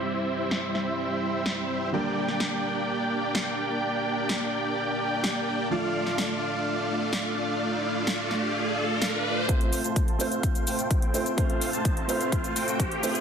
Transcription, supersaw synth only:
\new Staff \with { instrumentName = "Supersaw synth" } { \time 4/4 \key f \major \tempo 4 = 127 <g c' e' c'' e''>1 | <bes d' g' d'' g''>1~ | <bes d' g' d'' g''>1 | <a d' f' d'' f''>1~ |
<a d' f' d'' f''>1 | <a c' f' c'' f''>8. <a c' f' c'' a''>8. <a c' f' c'' f''>4 <a c' f' c'' g''>8. <a c' f' c'' g''>8 r16 | <a c' f' c'' f''>8. <a c' f' c'' a''>8. <a c' f' c'' f''>4 <a c' f' c'' g''>8. <a c' f' c'' g''>8 r16 | }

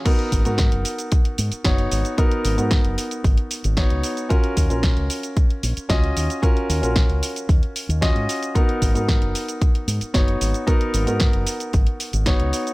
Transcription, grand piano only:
\new Staff \with { instrumentName = "Grand piano" } { \time 4/4 \key gis \dorian \tempo 4 = 113 <b dis' fis' ais'>8. <b dis' fis' ais'>2~ <b dis' fis' ais'>16 <b dis' fis' cis''>4 | <b dis' fis' ais'>8. <b dis' fis' ais'>2~ <b dis' fis' ais'>16 <b dis' fis' cis''>4 | <cis' eis' fis' ais'>8. <cis' eis' fis' ais'>2~ <cis' eis' fis' ais'>16 <cis' eis' fis' dis''>4 | <cis' eis' fis' ais'>8. <cis' eis' fis' ais'>2~ <cis' eis' fis' ais'>16 <cis' eis' fis' dis''>4 |
<b dis' fis' ais'>8. <b dis' fis' ais'>2~ <b dis' fis' ais'>16 <b dis' fis' cis''>4 | <b dis' fis' ais'>8. <b dis' fis' ais'>2~ <b dis' fis' ais'>16 <b dis' fis' cis''>4 | }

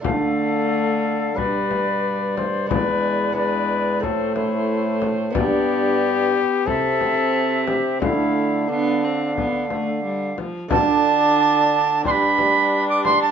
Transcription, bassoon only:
\new Staff \with { instrumentName = "Bassoon" } { \clef bass \time 4/4 \key d \dorian \tempo 4 = 90 d2 g,2 | e,2 a,2 | g,4. r8 c2 | d2.~ d8 r8 |
d2 g2 | }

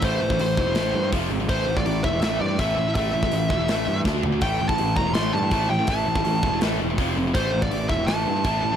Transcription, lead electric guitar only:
\new Staff \with { instrumentName = "Lead electric guitar" } { \time 4/4 \key a \minor \tempo 4 = 164 c''2. r4 | c''8. d''8. e''8 e''8 d''8 e''4 | e''2. r4 | g''8. a''8. bes''8 c'''8 a''4 g''8 |
a''2 r2 | c''8. d''8. e''8 a''2 | }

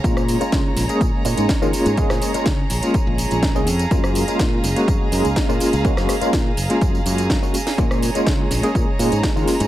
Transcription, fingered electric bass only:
\new Staff \with { instrumentName = "Fingered electric bass" } { \clef bass \time 4/4 \key ais \phrygian \tempo 4 = 124 ais,8. r16 cis16 r16 ais,,16 r16 ais,16 r16 ais,16 gis,16 r16 dis16 r16 gis,16 | r16 ais,16 r8 cis16 r16 ais,,16 r8 ais,,16 r16 ais,,8. eis,16 r16 | fis,8. r16 ais,16 r16 fis,,16 r16 fis,16 r16 fis,16 cis,16 r16 ais,16 r16 cis,16 | r16 fis,16 r8 ais,16 r16 fis,,16 r16 fis,16 r16 fis,8. r8. |
ais,8. r16 cis16 r16 ais,,16 r16 ais,16 r16 ais,16 gis,16 r16 dis16 r16 gis,16 | }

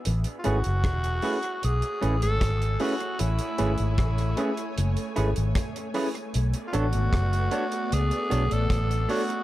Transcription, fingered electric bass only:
\new Staff \with { instrumentName = "Fingered electric bass" } { \clef bass \time 4/4 \key a \major \tempo 4 = 76 a,,16 r16 gis,,16 fis,,16 e,,8 r8 b,,16 r16 a,,16 gis,,16 gis,,8 r8 | a,,16 r16 gis,,16 gis,,16 a,,8 r8 fis,,16 r16 gis,,16 gis,,16 r4 | b,,16 r16 a,,16 gis,,16 fis,,8 r8 cis,16 r16 b,,16 a,,16 a,,8 r8 | }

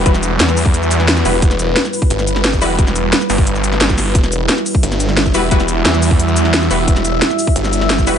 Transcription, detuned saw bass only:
\new Staff \with { instrumentName = "Detuned saw bass" } { \clef bass \time 4/4 \key e \minor \tempo 4 = 176 e,,4 e,2~ e,8 e,,8 | e,,4 r4 g,,4. e,,8 | e,,4 r8 g,,2~ g,,8 | e,,4 r4 g,,4. e,,8 |
e,,4 e,2~ e,8 e,,8 | e,,4 r4 g,,4. e,,8 | }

